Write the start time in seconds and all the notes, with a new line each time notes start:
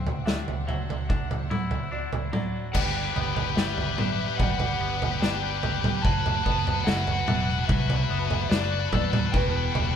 Already playing: D2 D3 C4 D4 C5 E5 F#5
0.07 floor tom
0.26 D4 E5, snare
0.48 floor tom
0.67 F#3 E5, floor tom
0.90 floor tom
1.09 D4, kick, floor tom
1.31 floor tom
1.50 E4, mid tom
1.71 floor tom
1.92 D4 D5
2.13 floor tom
2.33 F#3 D5, mid tom
2.73 G1 G2 D4 G4 B4 D5 G5, kick, floor tom, crash
2.81 G4 B4
2.90 G4 B4
2.97 G4 B4
3.05 G4 B4
3.13 G1 B3 G4 B4, floor tom
3.20 G4 B4
3.27 G4 B4
3.35 G4 B4, floor tom
3.42 G4 B4
3.50 G4 B4
3.56 G1 G3 G4 B4 E5, snare
3.65 G4 B4
3.74 G4 B4
3.78 G4, floor tom
3.83 B4
3.89 G4 B4
3.97 D4 G4 B4, mid tom
4.05 G4 B4
4.11 G4 B4
4.20 G4 B4
4.27 G4 B4
4.34 G4 B4 F#5
4.39 G1 G3 G4 D5, kick, floor tom, mid tom
4.44 B4
4.50 G4 B4
4.58 G4 B4, floor tom
4.66 G4 B4
4.73 G4 B4
4.79 G1 B3 G4 B4
4.89 G4 B4
4.97 G4 B4
5.02 G4 B4, floor tom
5.12 G4 B4
5.19 G1 D4 G4 B4 D5 G5, snare
5.28 G4 B4
5.35 G4 B4
5.43 G4 B4
5.50 G4 B4
5.58 G4 B4
5.63 G4 B4, floor tom
5.73 G4 B4
5.81 G4 B4, floor tom, mid tom
5.88 G4 B4
5.96 G4 B4
6.02 F#1 F#3 A3 D4 F#4 B4 A5, kick, floor tom
6.11 F#4 B4
6.18 F#4 B4
6.26 F#4 B4, floor tom
6.35 F#4 B4
6.43 F#1 B3 F#4 B4, kick, floor tom
6.50 F#4 B4
6.58 F#4 B4
6.66 F#4 B4, floor tom
6.73 F#4 B4
6.80 F#4 B4
6.85 F#1 F#3 F#4 E5 F#5, snare
6.89 B4
6.96 F#4 B4
7.03 F#4 B4, floor tom
7.11 F#4 B4
7.19 F#4 B4
7.27 E1 D4 F#4 B4 E5, mid tom
7.34 F#4 B4
7.41 F#4 B4
7.50 F#4 B4
7.58 F#4 B4
7.65 F#4 B4 E5
7.69 C2 F#3 F#4, kick, floor tom, mid tom
7.74 B4
7.79 F#4 B4
7.87 F#4 B4, floor tom
7.95 F#4 B4
8.03 F#4 B4
8.09 F#1 B3 F#4 B4
8.19 F#4 B4
8.26 F#4 B4
8.31 F#4, floor tom
8.35 B4
8.41 F#4 B4
8.49 F#1 D4 F#4 B4 D5, snare
8.56 F#4 B4
8.64 F#4 B4
8.72 F#4 B4
8.79 F#4 B4
8.86 F#4 B4
8.92 D#2 F#4 A4 B4 D5, kick, floor tom, mid tom
9.02 F#4 B4
9.10 F#4 B4, floor tom, mid tom
9.17 F#4 B4
9.25 F#4 B4
9.32 E1 E2 G3 B3 E4 F#4 B4 G5, kick, floor tom
9.40 B3 F#4
9.48 B3 F#4
9.56 B3 F#4
9.63 B3 F#4
9.71 E1 B3 F#4, floor tom
9.76 G3 B3
9.80 F#4
9.86 B3 F#4